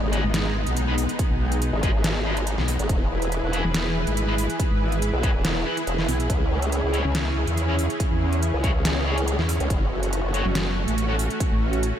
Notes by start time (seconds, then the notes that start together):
Already playing: G#3 B3 D#4, impact
0.03 G#1
0.12 D#4 G#4 B4, closed hi-hat
0.24 G#1
0.34 snare, closed hi-hat
0.67 B1, closed hi-hat
0.77 closed hi-hat
0.88 D#4 G#4 B4
0.98 open hi-hat
1.09 closed hi-hat
1.19 kick, closed hi-hat
1.30 B1
1.52 closed hi-hat
1.62 closed hi-hat
1.73 G#1
1.83 D#4 G#4 B4, kick, closed hi-hat
2.04 snare, closed hi-hat
2.25 D#4 G#4 B4
2.37 closed hi-hat
2.47 closed hi-hat
2.58 B1, snare
2.68 open hi-hat
2.79 G#1, closed hi-hat
2.89 E1 E3 E4 G#4 B4, kick, closed hi-hat
3.11 E1
3.22 closed hi-hat
3.32 closed hi-hat
3.43 E1
3.53 E4 G#4 B4, closed hi-hat
3.64 E1
3.74 snare, closed hi-hat
4.07 G#1, closed hi-hat
4.17 closed hi-hat
4.28 E4 G#4 B4
4.38 open hi-hat
4.50 closed hi-hat
4.60 kick, closed hi-hat
4.71 G#1
4.92 closed hi-hat
5.02 closed hi-hat
5.13 B1
5.23 E4 G#4 B4, kick, closed hi-hat
5.35 E1
5.45 E1, snare, closed hi-hat
5.66 E4 G#4 B4
5.77 closed hi-hat
5.87 E1, closed hi-hat
5.98 snare
6.08 B1, open hi-hat
6.20 closed hi-hat
6.30 C#2 C#3 C#4, kick, closed hi-hat
6.51 C#2
6.62 closed hi-hat
6.72 closed hi-hat
6.84 C#2
6.93 E4 G#4 C#5, closed hi-hat
7.05 C#2
7.15 snare, closed hi-hat
7.47 E2, closed hi-hat
7.57 closed hi-hat
7.68 E4 G#4 C#5
7.79 open hi-hat
7.90 closed hi-hat
8.00 kick, closed hi-hat
8.11 E2
8.33 closed hi-hat
8.43 closed hi-hat
8.54 C#2
8.64 E4 G#4 C#5, kick, closed hi-hat
8.85 snare, closed hi-hat
9.06 E4 G#4 C#5
9.18 closed hi-hat
9.28 closed hi-hat
9.39 E2, snare
9.49 open hi-hat
9.60 C#2, closed hi-hat
9.70 F#1 A3 C#4 F#4, kick, closed hi-hat
9.91 F#1
10.03 closed hi-hat
10.13 closed hi-hat
10.24 F#1
10.34 F#4 A4 C#5, closed hi-hat
10.45 F#1
10.55 snare, closed hi-hat
10.88 A1, closed hi-hat
10.98 closed hi-hat
11.09 F#4 A4 C#5
11.19 open hi-hat
11.30 closed hi-hat
11.40 kick, closed hi-hat
11.52 A1
11.73 closed hi-hat
11.83 closed hi-hat